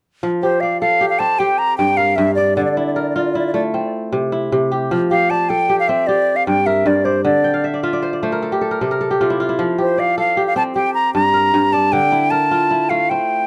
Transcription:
0.23 kora F3
0.42 kora G4, flute C5
0.61 kora D5, flute F5
0.81 kora A4, flute F5
1.01 kora G4
1.09 flute F5
1.19 kora C4, flute A5
1.39 kora G4, flute G5
1.58 flute A#5
1.77 kora G2, flute G5
1.97 kora A#4, flute F5
2.16 kora G2, flute E5
2.35 flute D5, kora D5
2.56 kora D3, flute D5
2.65 flute D5
2.71 flute D5
2.77 kora E4, flute D5
2.86 flute D5
2.94 kora A#4, flute D5
3.02 flute D5
3.09 flute D5
3.16 kora F4, flute D5
3.25 flute D5
3.32 kora E4, flute D5
3.39 flute D5
3.47 flute D5
3.54 kora A3, flute D5
3.74 kora C4
4.12 kora C3
4.32 kora E4
4.52 kora C3
4.72 kora G4
4.91 kora F3
5.11 kora G4, flute F5
5.30 kora D5, flute A5
5.49 kora A4, flute G5
5.69 kora G4
5.80 flute F5
5.88 kora C4, flute E5
6.07 kora G4, flute D5
6.36 flute F5
6.47 kora G2, flute G5
6.66 kora A#4, flute E5
6.86 kora G2, flute D5
7.05 flute C5, kora D5
7.25 kora D3, flute D5
7.44 kora G5
7.54 kora F5
7.64 kora E5
7.74 kora D5
7.83 kora F4 E5
7.93 kora D5
8.02 kora C5
8.13 kora D5
8.23 kora A3 C5
8.32 kora A#4
8.42 kora A4
8.52 kora G4
8.61 kora A4
8.71 kora A#4
8.81 kora C3 A4
8.91 kora A#4
9.01 kora A4
9.11 kora G4
9.21 kora C3 F4
9.30 kora E4
9.40 kora F4
9.49 kora E4
9.59 kora F3
9.78 kora G4, flute C5
9.98 kora D5, flute F5
10.18 kora A4, flute F5
10.37 kora G4
10.47 flute F5
10.56 kora C4, flute A5
10.75 kora G4, flute G5
10.94 flute A#5
11.14 kora G2, flute A#5
11.34 kora A#4
11.54 kora G2
11.73 kora D5, flute A5
11.92 kora D3, flute G5
12.12 kora E4
12.31 kora A#4, flute A5
12.51 kora F4
12.71 kora E4
12.89 kora A3, flute F5
13.10 kora C4, flute G5

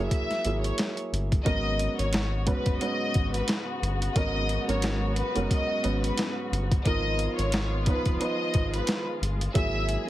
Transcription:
Already playing: upright piano F#3 A#3 E4
0.00 upright piano G#4
0.10 violin section E5, kick, closed hi-hat
0.31 snare, closed hi-hat
0.45 analog synth bass G#1, upright piano F#3 A#3 E4 G#4, closed hi-hat
0.61 violin section C#5, closed hi-hat
0.78 snare, closed hi-hat
0.97 closed hi-hat
1.12 analog synth bass G1, closed hi-hat
1.32 kick, closed hi-hat
1.44 analog synth bass G#1, upright piano G#2 F#3 B3 C#4 A#4, string section C#3 G#3 B3 F#4, violin section D#5, kick, closed hi-hat
1.79 closed hi-hat
1.99 analog synth bass G#1, violin section C#5, closed hi-hat
2.13 snare, closed hi-hat
2.46 upright piano G#2 F#3 B3 C#4 B4, violin section B4, kick, closed hi-hat
2.66 analog synth bass F#1, kick, closed hi-hat
2.80 upright piano G#2 F#3 B3 C#4 B4, violin section D#5, closed hi-hat
3.14 analog synth bass G#1, kick, closed hi-hat
3.34 violin section B4, closed hi-hat
3.48 snare, closed hi-hat
3.82 analog synth bass G1, closed hi-hat
4.02 closed hi-hat
4.15 analog synth bass G#1, upright piano G#2 F#3 B3 C#4 A#4, violin section D#5, kick, closed hi-hat
4.49 closed hi-hat
4.68 analog synth bass G#1, upright piano G#2 F#3 B3 C#4 A#4, violin section C#5, closed hi-hat
4.82 snare, closed hi-hat
5.16 violin section B4, closed hi-hat
5.35 analog synth bass F#1, upright piano G#2 F#3 B3 C#4 A#4, closed hi-hat
5.51 violin section D#5, kick, closed hi-hat
5.83 analog synth bass G#1, upright piano G#2 F#3 B3 C#4 B4, closed hi-hat
6.02 violin section B4, closed hi-hat
6.18 snare, closed hi-hat
6.52 analog synth bass G1, closed hi-hat
6.72 kick, closed hi-hat
6.86 analog synth bass G#1, string section D#3 G#3 B3 F4, upright piano F3 B3 D#4 A#4, violin section D#5, kick, closed hi-hat
7.19 closed hi-hat
7.37 analog synth bass G#1, violin section C#5, closed hi-hat
7.52 snare, closed hi-hat
7.86 upright piano F3 B3 D#4 B4, violin section B4, kick, closed hi-hat
8.06 analog synth bass F1, kick, closed hi-hat
8.20 upright piano F3 B3 D#4 B4, violin section D#5, closed hi-hat
8.54 analog synth bass G#1, kick, closed hi-hat
8.74 violin section B4, closed hi-hat
8.87 snare, closed hi-hat
9.22 analog synth bass G1, closed hi-hat
9.41 closed hi-hat
9.54 analog synth bass G#1, string section E3 G#4, upright piano F#3 A#3 E4 G#4, violin section E5, kick, closed hi-hat
9.89 closed hi-hat

